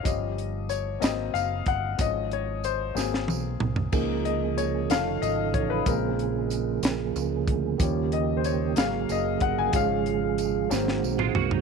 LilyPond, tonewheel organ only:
<<
  \new Staff \with { instrumentName = "Tonewheel organ" } { \time 6/8 \key des \major \tempo 4. = 62 r2. | r2. | <des aes'>4. <ees' a'>4. | aes'2. |
g'4. aes'4. | aes'4. <c' ges'>4. | }
  \new Staff \with { instrumentName = "Tonewheel organ" } { \clef bass \time 6/8 \key des \major << { r2. | r2. | bes4. r4. | bes2. |
bes2. | aes2. | } \\ { r2. | r2. | f2.~ | f2. |
ees4. ges4. | f4. ees4. | } >> }
>>